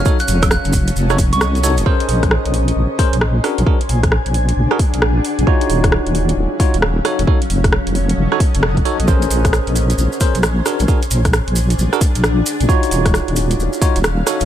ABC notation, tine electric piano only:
X:1
M:4/4
L:1/16
Q:"Swing 16ths" 1/4=133
K:Bbm
V:1 name="Tine electric piano"
[EG=Ad] z8 [EGAd] z4 [EGAd] z | [DABc]8- [DABc]2 [DABc] z3 [=D^FAB] z | [=D^FAB] z8 [DFAB] z6 | [EFGd]8- [EFGd]2 [EFGd] z3 [EG=Ad] z |
[EG=Ad] z8 [EGAd] z4 [EGAd] z | [DABc]8- [DABc]2 [DABc] z3 [=D^FAB] z | [=D^FAB] z8 [DFAB] z6 | [EFGd]8- [EFGd]2 [EFGd] z3 [EG=Ad] z |]